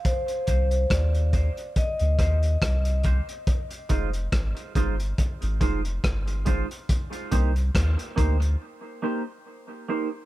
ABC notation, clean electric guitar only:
X:1
M:4/4
L:1/8
Q:"Swing 16ths" 1/4=70
K:Cm
V:1 name="Clean electric guitar"
z [B,EGc] z [B,EGc] z [B,EGc] z [B,EGc] | z [A,EFc] z [A,EFc] z [A,EFc] z [A,EFc] | z [B,EGc] z [B,EGc] z [B,EGc] z [B,EGc] |]